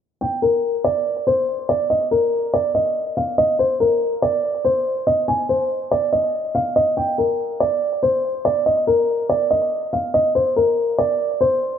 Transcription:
0.21 0.38 G5 medium
0.42 0.82 A#4 medium
0.84 1.24 D5 medium
1.27 1.66 C5 medium
1.69 1.86 D5 medium
1.90 2.07 D#5 medium
2.11 2.51 A#4 medium
2.54 2.70 D5 medium
2.75 3.14 D#5 medium
3.17 3.34 F5 medium
3.38 3.55 D#5 medium
3.59 3.76 C5 medium
3.80 4.20 A#4 medium
4.22 4.62 D5 medium
4.65 5.04 C5 medium
5.07 5.24 D#5 medium
5.28 5.45 G#5 medium
5.49 5.89 C5 medium
5.91 6.08 D5 medium
6.13 6.52 D#5 medium
6.55 6.72 F5 medium
6.76 6.93 D#5 medium
6.97 7.14 G5 medium
7.18 7.58 A#4 medium
7.60 8.00 D5 medium
8.03 8.42 C5 medium
8.45 8.62 D5 medium
8.66 8.83 D#5 medium
8.87 9.27 A#4 medium
9.29 9.46 D5 medium
9.51 9.90 D#5 medium
9.93 10.10 F5 medium
10.14 10.31 D#5 medium
10.35 10.52 C5 medium
10.56 10.96 A#4 medium
10.98 11.38 D5 medium
11.41 11.79 C5 medium

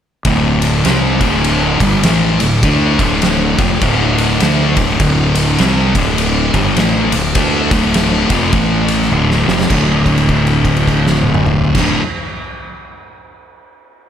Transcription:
0.25 0.81 D1 loud
0.25 0.84 D2 loud
0.25 0.85 A2 loud
0.25 0.85 D3 loud
0.25 kick loud
0.25 ride loud
0.62 ride medium
0.84 1.19 C2 loud
0.84 1.20 C3 loud
0.84 1.20 G3 medium
0.84 1.21 C4 loud
0.84 snare loud
0.84 ride loud
1.21 1.77 D1 medium
1.21 1.79 D2 medium
1.21 1.80 A2 medium
1.21 1.80 D3 loud
1.21 kick loud
1.21 ride medium
1.44 ride loud
1.80 2.02 G1 loud
1.80 2.03 G2 medium
1.80 2.03 D3 medium
1.80 2.04 G3 loud
1.80 kick loud
1.80 ride medium
2.03 2.37 A1 medium
2.03 2.39 A2 medium
2.03 2.39 E3 loud
2.03 2.40 A3 loud
2.03 snare loud
2.03 ride loud
2.40 2.62 D1 medium
2.40 2.59 D2 medium
2.40 2.59 A2 medium
2.40 ride medium
2.63 2.97 D2 loud
2.63 2.98 D3 loud
2.63 2.99 A3 loud
2.63 2.99 D4 loud
2.63 kick loud
2.63 ride loud
2.99 3.54 D1 medium
2.99 3.57 D2 medium
2.99 3.58 A2 medium
2.99 3.58 D3 loud
2.99 kick loud
2.99 ride medium
3.22 snare loud
3.22 ride loud
3.58 3.80 F1 loud
3.58 3.81 F2 loud
3.58 3.81 C3 medium
3.58 3.82 F3 loud
3.58 kick loud
3.58 ride medium
3.81 4.37 D1 loud
3.81 4.40 D2 medium
3.81 4.41 A2 loud
3.81 4.40 D3 medium
3.81 kick loud
3.81 ride loud
4.18 ride medium
4.40 4.75 D2 loud
4.40 4.76 D3 medium
4.40 4.76 A3 loud
4.40 4.77 D4 medium
4.40 snare loud
4.40 ride loud
4.77 4.98 D1 loud
4.77 5.00 D2 medium
4.77 5.00 A2 medium
4.77 5.00 D3 loud
4.77 kick loud
4.77 ride medium
5.00 5.55 D1 loud
5.00 5.58 D2 medium
5.00 5.59 A2 loud
5.00 5.59 D3 loud
5.00 kick loud
5.00 ride loud
5.35 ride medium
5.58 5.93 C2 loud
5.58 5.94 C3 loud
5.58 5.94 G3 loud
5.58 5.94 C4 loud
5.58 snare loud
5.58 ride loud
5.95 6.50 D1 loud
5.95 6.53 D2 medium
5.95 6.53 A2 loud
5.95 6.54 D3 loud
5.95 kick loud
5.95 ride medium
6.18 ride loud
6.54 6.75 G1 loud
6.54 6.76 G2 medium
6.54 6.77 D3 loud
6.54 6.77 G3 medium
6.54 kick loud
6.54 ride medium
6.76 7.10 A1 loud
6.76 7.12 A2 loud
6.76 7.12 E3 loud
6.76 7.12 A3 loud
6.76 snare loud
6.76 ride loud
7.12 7.33 D1 medium
7.12 7.31 D2 medium
7.12 7.31 A2 medium
7.12 ride medium
7.35 7.69 D2 medium
7.35 7.70 D3 medium
7.35 7.71 A3 loud
7.35 7.71 D4 loud
7.35 kick loud
7.35 ride loud
7.71 8.26 D1 loud
7.71 8.29 D2 medium
7.71 8.29 A2 medium
7.71 8.30 D3 medium
7.71 kick loud
7.71 ride medium
7.94 snare loud
7.94 ride loud
8.30 8.51 F1 loud
8.30 8.53 F2 medium
8.30 8.53 C3 loud
8.30 8.53 F3 loud
8.30 kick loud
8.30 ride medium
8.52 9.07 A1 medium
8.52 9.11 A2 medium
8.52 9.11 E3 loud
8.52 9.11 A3 loud
8.52 kick loud
8.52 ride medium
8.88 ride medium
9.02 snare soft
9.12 9.45 D1 medium
9.12 9.46 D2 medium
9.12 9.47 A2 loud
9.12 9.47 D3 loud
9.12 high tom medium
9.31 snare medium
9.47 9.69 F1 medium
9.47 9.69 F2 medium
9.47 9.70 C3 medium
9.47 9.70 F3 loud
9.47 snare loud
9.61 snare loud
9.70 11.63 D1 loud
9.70 11.74 D2 loud
9.70 11.76 A2 loud
9.70 11.78 D3 loud
9.70 kick loud
9.70 crash medium
10.06 kick medium
10.06 crash soft
10.18 crash medium
10.29 kick medium
10.29 crash soft
10.47 crash soft
10.65 kick medium
10.65 crash medium
10.77 crash soft
10.88 kick medium
10.88 crash medium
11.07 snare medium
11.23 high tom medium
11.34 mid tom medium
11.46 mid tom loud
11.64 floor tom medium
11.75 11.97 D1 loud
11.75 11.98 D2 medium
11.75 11.99 A2 loud
11.75 kick loud
11.75 snare medium
11.75 crash medium
11.79 12.00 D3 loud

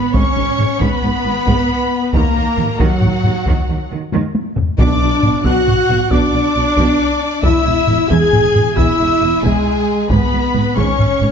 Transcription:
0.00 0.14 B3 medium
0.00 0.15 B3 loud
0.00 0.13 B4 loud
0.00 0.14 B5 loud
0.00 0.15 B5 loud
0.13 0.22 G#1 medium
0.13 0.22 G#2 medium
0.13 0.81 C#4 loud
0.13 0.79 C#5 loud
0.13 0.83 C#6 loud
0.13 0.79 C#6 loud
0.13 taiko medium
0.36 0.44 G#1 medium
0.36 0.45 G#2 medium
0.36 taiko low-mid medium
0.58 0.66 G#1 medium
0.58 0.66 G#2 medium
0.58 taiko low-mid medium
0.80 0.88 G#1 medium
0.80 0.89 G#2 loud
0.80 2.13 B3 loud
0.80 2.15 B3 loud
0.80 2.13 B4 loud
0.80 2.13 B5 loud
0.80 2.14 B5 loud
0.80 taiko medium
1.02 1.10 G#1 medium
1.02 1.11 G#2 medium
1.25 1.33 G#1 medium
1.25 1.33 G#2 medium
1.47 1.55 G#1 loud
1.47 1.55 G#2 loud
1.47 taiko medium
2.13 2.21 D#2 loud
2.13 2.22 D#3 loud
2.13 2.79 A#3 loud
2.13 2.78 A#4 loud
2.13 2.83 A#5 loud
2.13 2.79 A#5 loud
2.13 taiko loud
2.36 2.44 D#2 medium
2.36 2.45 D#3 medium
2.57 2.66 D#2 medium
2.57 2.66 D#3 medium
2.57 taiko low-mid medium
2.79 2.87 D#2 loud
2.79 2.88 D#3 loud
2.79 3.90 F#3 loud
2.79 3.91 F#3 medium
2.79 3.91 F#4 loud
2.79 3.91 F#5 loud
2.79 taiko medium
3.01 3.10 D#2 medium
3.01 3.11 D#3 medium
3.01 taiko low-mid medium
3.23 3.33 D#2 medium
3.23 3.33 D#3 medium
3.23 taiko low-mid medium
3.46 3.54 D#2 loud
3.46 3.56 D#3 loud
3.46 taiko medium
3.68 3.76 D#2 medium
3.68 3.77 D#3 medium
3.91 3.99 D#2 medium
3.91 4.00 D#3 medium
4.12 4.21 D#2 loud
4.12 4.22 D#3 loud
4.12 taiko high medium
4.35 taiko high loud
4.57 taiko low loud
4.78 4.87 B1 loud
4.78 5.41 B2 loud
4.78 4.87 B2 loud
4.78 5.41 D4 loud
4.78 5.41 D5 loud
4.78 5.41 D6 loud
4.78 5.46 D6 loud
4.78 taiko loud
5.01 5.09 B1 medium
5.01 5.10 B2 medium
5.23 5.31 B1 medium
5.23 5.31 B2 medium
5.23 taiko low-mid medium
5.44 5.52 B1 loud
5.44 5.54 B2 loud
5.44 6.12 F#4 loud
5.44 6.11 F#4 loud
5.44 6.12 F#5 loud
5.44 6.12 F#6 loud
5.44 6.11 F#6 loud
5.44 taiko medium
5.67 5.75 B1 medium
5.67 5.76 B2 medium
5.67 taiko low-mid medium
5.89 5.97 B1 medium
5.89 5.98 B2 medium
5.89 taiko low-mid medium
6.11 6.19 B1 loud
6.11 6.20 B2 loud
6.11 7.42 D4 loud
6.11 7.41 D5 loud
6.11 7.43 D6 loud
6.11 7.42 D6 loud
6.11 taiko medium
6.33 6.42 B1 medium
6.33 6.42 B2 medium
6.56 6.64 B1 medium
6.56 6.64 B2 medium
6.77 6.85 B1 loud
6.77 6.87 B2 loud
6.77 taiko medium
7.43 7.52 E1 loud
7.43 7.52 E2 loud
7.43 8.09 E4 loud
7.43 8.10 E5 loud
7.43 8.09 E6 loud
7.43 taiko loud
7.66 7.74 E1 medium
7.66 7.74 E2 medium
7.88 7.96 E1 medium
7.88 7.96 E2 medium
7.88 taiko low-mid medium
8.09 8.19 E1 loud
8.09 8.18 E2 loud
8.09 8.76 G#4 loud
8.09 8.77 G#4 loud
8.09 8.77 G#5 loud
8.09 8.77 G#6 loud
8.09 8.78 G#6 loud
8.09 taiko medium
8.32 8.41 E1 medium
8.32 8.40 E2 medium
8.32 taiko low-mid medium
8.54 8.63 E1 medium
8.54 8.62 E2 medium
8.54 taiko low-mid medium
8.76 8.85 E1 medium
8.76 8.84 E2 loud
8.76 9.43 E4 loud
8.76 9.42 E5 loud
8.76 9.42 E6 loud
8.76 taiko medium
8.99 9.07 E1 medium
8.99 9.07 E2 medium
9.21 9.30 E1 medium
9.21 9.29 E2 medium
9.42 9.52 E1 medium
9.42 9.51 E2 loud
9.42 10.10 G#3 loud
9.42 10.11 G#3 loud
9.42 10.10 G#4 loud
9.42 10.09 G#5 loud
9.42 10.08 G#5 loud
9.42 taiko medium
10.09 10.18 G#1 loud
10.09 10.18 G#2 loud
10.09 10.76 B3 loud
10.09 10.75 B3 loud
10.09 10.75 B4 loud
10.09 10.75 B5 loud
10.09 taiko loud
10.32 10.40 G#1 medium
10.32 10.40 G#2 medium
10.54 10.62 G#1 medium
10.54 10.62 G#2 medium
10.54 taiko low-mid medium
10.76 10.85 G#1 loud
10.76 10.84 G#2 loud
10.76 11.32 C#4 loud
10.76 11.32 C#5 loud
10.76 11.32 C#6 loud
10.76 11.19 C#6 loud
10.76 taiko medium
10.98 11.07 G#1 medium
10.98 11.06 G#2 medium
10.98 taiko low-mid medium
11.21 11.30 G#1 medium
11.21 11.29 G#2 medium
11.21 taiko low-mid medium

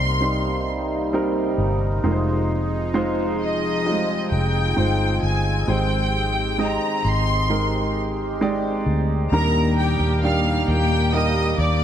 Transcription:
0.00 1.55 C2 medium
0.00 2.01 C3 medium
0.00 2.04 C3 soft
0.00 0.20 G3 medium
0.00 2.00 G3 medium
0.00 2.00 A#3 medium
0.00 0.21 C4 medium
0.00 0.21 D#4 medium
0.00 5.64 D#4 medium
0.00 1.15 A#4 medium
0.00 0.67 C6 loud
0.20 1.08 G3 medium
0.20 1.08 C4 medium
0.20 1.08 D#4 medium
0.20 1.09 C5 medium
1.13 1.99 G3 medium
1.13 1.99 C4 medium
1.13 2.00 D#4 medium
1.13 2.00 A#4 medium
1.58 2.01 G1 medium
2.04 4.27 F1 medium
2.04 3.36 C3 medium
2.04 5.64 F3 medium
2.04 2.90 G#3 medium
2.04 9.27 C4 medium
2.04 2.90 D#4 medium
2.04 2.91 F4 medium
2.04 5.64 G#4 medium
2.04 2.11 A#4 medium
2.12 2.94 C5 medium
2.94 3.81 G#3 medium
2.94 3.81 D#4 medium
2.94 3.81 F4 medium
2.94 3.81 C5 medium
3.41 4.28 D#5 medium
3.85 3.92 G3 medium
3.85 4.72 D#4 medium
3.85 4.72 F4 medium
3.85 4.72 D#5 medium
3.92 4.75 G#3 medium
4.32 4.74 F1 medium
4.32 5.18 G5 medium
4.76 5.20 G1 medium
4.76 5.63 G#3 medium
4.76 5.63 D#4 medium
4.76 5.64 F4 medium
4.76 5.64 C5 medium
5.23 5.65 G1 medium
5.23 5.68 G#5 medium
5.67 6.77 G#1 medium
5.67 7.00 G#2 medium
5.67 7.00 D#3 medium
5.67 6.54 G#3 medium
5.67 9.28 G#3 medium
5.67 6.54 D#4 medium
5.67 7.48 G4 medium
5.67 6.54 G4 medium
5.67 6.55 C5 medium
5.67 6.60 G5 medium
6.58 7.45 G#3 medium
6.58 7.45 D#4 medium
6.58 7.45 G4 medium
6.58 7.45 D#5 medium
6.58 7.06 A#5 medium
7.05 8.82 G#1 medium
7.05 7.96 C6 loud
7.49 8.36 G#3 medium
7.49 8.36 D#4 medium
7.49 9.29 G4 medium
7.49 8.36 G4 medium
7.49 8.36 A#4 medium
8.41 9.27 G#3 medium
8.41 9.27 D#4 medium
8.41 9.28 G4 medium
8.41 9.28 D5 medium
8.86 9.28 D2 medium
9.32 9.96 D#2 loud
9.32 11.84 A#2 medium
9.32 10.65 A#2 medium
9.32 11.84 D#3 medium
9.32 10.18 G3 medium
9.32 11.84 A#3 medium
9.32 10.18 D4 medium
9.32 10.19 D#4 medium
9.32 11.84 G4 medium
9.32 10.19 A#4 medium
9.32 9.75 A#4 medium
9.32 9.75 A#5 loud
9.79 10.24 G4 medium
9.79 10.23 G5 medium
10.00 10.64 D#2 medium
10.23 11.09 G3 medium
10.23 11.10 D4 medium
10.23 11.10 D#4 medium
10.23 11.10 G4 medium
10.23 10.65 F5 medium
10.23 10.65 F6 medium
10.68 11.55 D#2 medium
10.68 11.11 G4 medium
10.68 11.11 G5 medium
11.13 11.84 G3 medium
11.13 11.84 A#3 medium
11.13 11.84 D#4 medium
11.13 11.84 A#4 medium
11.13 11.59 D#5 medium
11.13 11.60 D#6 medium
11.58 11.84 D#2 medium
11.58 11.84 D5 medium
11.58 11.84 D6 medium

